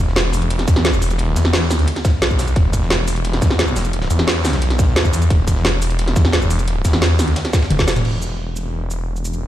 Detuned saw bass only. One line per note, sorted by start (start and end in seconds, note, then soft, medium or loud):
0.00 0.66 E1 medium
0.68 1.01 E2 loud
1.02 1.35 E1 loud
1.36 1.86 E2 loud
2.22 2.55 B1 loud
2.56 3.41 E1 loud
3.42 3.75 E2 loud
3.76 4.09 E1 loud
4.11 4.61 E2 loud
4.62 4.95 B1 loud
4.96 5.29 E2 loud
5.30 6.15 E1 loud
6.16 6.49 E2 loud
6.50 6.83 E1 loud
6.85 7.35 E2 loud
7.70 8.03 E1 loud
8.05 9.47 E1 medium